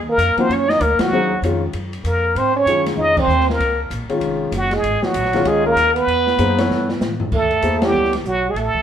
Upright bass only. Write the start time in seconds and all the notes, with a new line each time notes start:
Already playing: D#2
0.18 F2
0.37 muted upright bass stroke
0.49 F#2
0.81 D2
0.99 muted upright bass stroke
1.11 D#2
1.42 F2
1.74 F#2
2.04 F2
2.35 G#2
2.66 F#2
2.97 F2
3.27 D#2
3.59 C#2
3.90 A#1
4.09 muted upright bass stroke
4.21 F1
4.52 F#1
4.83 G#1
5.03 muted upright bass stroke
5.14 A#1
5.45 C#2
5.76 D#2
6.07 E2
6.39 F#2
6.70 G2
7.01 A2
7.32 D2
7.63 E2
7.94 C#2
8.24 B1
8.54 A1
8.75 muted upright bass stroke